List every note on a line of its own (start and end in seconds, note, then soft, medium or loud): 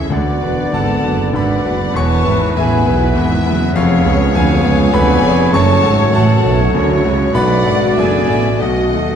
0.00 0.14 E1 medium
0.00 0.11 C#2 medium
0.00 0.12 C#2 medium
0.00 0.14 E2 medium
0.00 0.10 G#3 medium
0.00 0.12 G#3 medium
0.00 0.12 A3 medium
0.00 0.14 C#4 medium
0.00 0.10 E4 medium
0.00 0.14 E4 medium
0.00 0.14 G#4 medium
0.00 0.14 C#5 medium
0.00 0.10 E5 medium
0.00 0.14 E5 medium
0.00 0.14 G#5 medium
0.00 0.14 C#6 medium
0.10 0.41 D2 medium
0.10 0.42 D2 medium
0.10 0.41 D3 medium
0.10 1.34 B3 medium
0.10 1.93 B3 medium
0.10 3.71 B3 medium
0.10 1.96 D4 medium
0.10 0.73 F#4 medium
0.10 0.41 F#4 medium
0.10 0.69 D5 medium
0.10 1.34 D5 medium
0.10 1.92 D5 medium
0.10 1.33 D5 medium
0.10 0.70 D5 medium
0.10 0.76 F#5 medium
0.10 0.70 F#5 medium
0.42 0.72 E1 medium
0.42 0.74 E2 medium
0.42 0.70 D4 medium
0.42 0.70 F#4 medium
0.42 0.71 B4 medium
0.72 1.03 G#1 medium
0.72 1.04 G#1 medium
0.72 1.03 D2 medium
0.72 1.04 G#2 medium
0.72 1.03 D3 medium
0.72 1.34 E4 medium
0.72 1.31 A4 medium
0.72 1.35 F#5 medium
0.72 1.32 F#5 medium
0.72 1.31 A5 loud
0.72 1.36 A5 medium
1.03 1.34 F#1 medium
1.03 1.37 F#1 medium
1.03 1.34 F#2 medium
1.03 1.31 D4 medium
1.03 1.32 F#4 medium
1.03 1.32 B4 medium
1.33 1.65 G#1 medium
1.33 1.64 D2 medium
1.33 1.66 G#2 medium
1.33 1.64 D3 medium
1.33 1.94 B3 medium
1.33 1.95 D4 medium
1.33 1.65 B4 medium
1.33 1.94 D5 medium
1.33 1.97 D5 medium
1.33 1.95 F#5 medium
1.33 1.92 F#5 medium
1.33 1.98 B5 medium
1.33 1.92 B5 medium
1.65 1.95 F#1 medium
1.65 1.95 F#2 medium
1.65 1.92 D4 medium
1.65 1.93 F#4 medium
1.65 1.93 B4 medium
1.94 2.24 E1 medium
1.94 2.25 E1 medium
1.94 2.27 E1 medium
1.94 2.24 E2 medium
1.94 2.26 E2 medium
1.94 3.71 B3 medium
1.94 2.34 B3 medium
1.94 3.71 E4 medium
1.94 3.72 E4 medium
1.94 3.47 B4 medium
1.94 2.35 B4 medium
1.94 2.56 C#5 medium
1.94 2.55 A5 loud
1.94 2.52 C#6 loud
1.94 2.57 C#6 loud
1.98 2.53 C#5 medium
2.24 2.56 G#1 medium
2.24 2.56 G#2 medium
2.24 2.52 B3 medium
2.24 2.52 E4 medium
2.24 2.53 B4 medium
2.55 2.85 E1 medium
2.55 2.86 A1 medium
2.55 2.88 A1 medium
2.55 2.85 E2 medium
2.55 2.86 A2 medium
2.55 3.71 B3 medium
2.55 3.43 G#4 medium
2.55 3.78 B4 medium
2.55 3.15 B4 medium
2.55 3.46 E5 medium
2.55 3.43 E5 medium
2.55 3.46 G#5 medium
2.55 3.42 G#5 loud
2.86 3.18 B1 medium
2.86 3.16 B1 medium
2.86 3.16 B2 medium
2.86 3.13 B3 medium
2.86 3.13 E4 medium
2.86 3.13 B4 medium
3.15 3.45 E1 medium
3.15 3.45 G#1 medium
3.15 3.46 G#1 medium
3.15 3.44 E2 medium
3.15 3.45 G#2 medium
3.15 3.75 E5 medium
3.46 3.74 F#1 medium
3.46 3.75 F#1 medium
3.46 3.75 F#2 medium
3.46 3.72 B3 medium
3.46 3.72 E4 medium
3.46 3.72 B4 medium
3.74 4.06 F1 medium
3.74 4.04 F1 medium
3.74 4.04 F2 medium
3.74 4.04 F2 loud
3.74 5.36 B3 medium
3.74 4.33 B3 medium
3.74 4.33 C#4 medium
3.74 5.36 F4 medium
3.74 4.31 F4 medium
3.74 4.32 G#4 medium
3.74 4.91 C#5 loud
3.74 7.30 C#5 medium
3.74 4.30 C#5 loud
3.74 4.34 C#5 medium
3.74 4.04 C#5 medium
3.74 4.35 F5 medium
3.74 4.31 F5 loud
4.04 4.34 C#2 medium
4.04 4.35 C#2 loud
4.04 4.31 B3 medium
4.04 4.32 G#4 medium
4.04 4.32 C#5 medium
4.33 4.63 F1 medium
4.33 4.63 D2 medium
4.33 4.64 D2 medium
4.33 4.63 F2 medium
4.33 4.93 B3 medium
4.33 6.10 G#4 medium
4.33 4.62 G#4 medium
4.33 4.92 C#5 loud
4.33 4.93 F5 loud
4.33 4.91 F5 medium
4.33 4.95 G#5 loud
4.33 4.90 G#5 loud
4.64 4.93 C#2 medium
4.64 4.90 B3 medium
4.64 4.90 G#4 medium
4.64 4.91 C#5 medium
4.93 5.22 F1 loud
4.93 5.22 D2 loud
4.93 5.23 D2 medium
4.93 5.22 F2 loud
4.93 5.54 B3 medium
4.93 5.52 B3 medium
4.93 5.49 B4 medium
4.93 5.52 C#5 medium
4.93 5.53 D5 medium
4.93 5.53 G#5 loud
4.93 5.49 G#5 loud
4.93 5.49 B5 loud
4.93 5.54 B5 loud
5.22 5.52 F1 medium
5.22 5.53 F2 loud
5.22 5.50 B3 medium
5.22 5.50 G#4 medium
5.22 5.50 C#5 medium
5.52 5.82 F#1 loud
5.52 5.83 F#1 loud
5.52 5.83 F#1 medium
5.52 5.82 F#2 loud
5.52 5.83 F#2 medium
5.52 6.12 A3 medium
5.52 9.15 A3 medium
5.52 6.14 A3 medium
5.52 9.15 F#4 medium
5.52 6.13 C#5 medium
5.52 6.72 C#5 medium
5.52 5.82 C#5 loud
5.52 6.12 A5 loud
5.52 6.11 A5 loud
5.52 6.15 C#6 loud
5.52 6.10 C#6 loud
5.82 6.13 G#1 medium
5.82 6.13 G#2 medium
5.82 6.10 A3 medium
5.82 6.10 F#4 medium
5.82 6.11 C#5 medium
6.13 6.43 F#1 medium
6.13 6.43 A1 medium
6.13 6.43 F#2 medium
6.13 6.44 A2 loud
6.13 6.73 F#3 medium
6.13 7.32 A3 medium
6.13 6.74 F#4 medium
6.13 7.01 A4 medium
6.13 7.37 C#5 loud
6.13 7.04 F#5 medium
6.13 7.01 F#5 medium
6.13 7.04 A5 loud
6.13 7.00 A5 loud
6.43 6.73 B1 medium
6.43 6.74 B1 medium
6.43 6.74 B2 medium
6.43 6.71 A3 medium
6.43 6.71 F#4 medium
6.43 6.71 C#5 medium
6.73 7.03 F#1 medium
6.73 7.03 D2 loud
6.73 7.04 D2 medium
6.73 7.03 F#2 medium
6.73 7.03 D3 medium
6.73 7.33 F#3 medium
6.73 7.34 E4 medium
6.73 7.33 C#5 medium
7.03 7.34 C#2 medium
7.03 7.34 C#3 medium
7.03 7.32 A3 medium
7.03 7.32 F#4 medium
7.03 7.32 C#5 medium
7.34 7.65 B1 medium
7.34 7.65 B2 medium
7.34 7.96 F#3 medium
7.34 8.33 A3 medium
7.34 8.58 D4 medium
7.34 7.94 B4 medium
7.34 7.97 D5 medium
7.34 8.62 D5 medium
7.34 8.35 D5 medium
7.34 7.93 F#5 loud
7.34 7.94 F#5 medium
7.34 7.93 B5 loud
7.34 7.94 B5 loud
7.65 7.97 G#1 medium
7.65 7.99 G#1 medium
7.65 7.97 G#2 medium
7.65 7.94 A3 medium
7.65 7.94 F#4 medium
7.65 7.95 D5 medium
7.96 8.29 F#1 medium
7.96 8.30 F#1 medium
7.96 8.28 B1 medium
7.96 8.29 F#2 medium
7.96 8.28 B2 medium
7.96 8.61 B3 medium
7.96 8.58 G#4 medium
7.96 8.60 D5 medium
7.96 8.28 D5 medium
7.96 8.60 E5 medium
7.96 8.62 G#5 loud
7.96 8.58 G#5 loud
8.28 8.61 A1 medium
8.28 8.60 A1 medium
8.28 8.61 A2 medium
8.28 8.58 A3 medium
8.28 8.58 F#4 medium
8.28 8.58 D5 medium
8.60 8.93 B1 medium
8.60 8.96 B1 medium
8.60 8.93 B1 medium
8.60 8.93 B2 medium
8.60 8.94 B2 medium
8.60 9.15 A3 medium
8.60 9.15 F#4 medium
8.60 9.15 D#5 medium
8.60 8.94 D#5 medium
8.60 9.15 F#5 medium
8.64 8.93 F#4 medium
8.94 9.15 D#2 medium
8.94 9.15 D#3 medium
8.94 9.15 A3 medium
8.94 9.15 F#4 medium
8.94 9.15 D#5 medium